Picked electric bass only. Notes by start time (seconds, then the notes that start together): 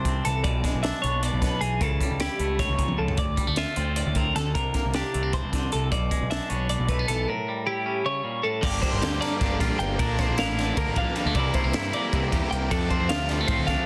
Already playing: C2
0.26 C2
0.45 B1
0.75 B1
1.04 B1
1.33 B1
1.61 B1
1.81 C#2
2.10 C#2
2.40 C#2
2.69 C#2
2.99 C#2
3.18 D2
3.48 D2
3.77 D2
4.06 D2
4.36 D2
4.56 C2
4.85 C2
5.15 C2
5.44 C2
5.74 C2
5.92 B1
6.22 B1
6.51 B1
6.79 B1
7.09 B1
8.63 G1
8.93 G1
9.02 D2
9.42 G1
9.61 A#1
9.80 G1
10.00 A#1
10.29 A#1
10.38 A1
10.77 D2
10.87 A1
11.26 D2
11.36 C2
11.65 C2
11.74 G2
12.13 C2
12.33 E2
12.52 C2
12.72 F2
13.01 F2
13.10 D2
13.48 A2
13.59 D2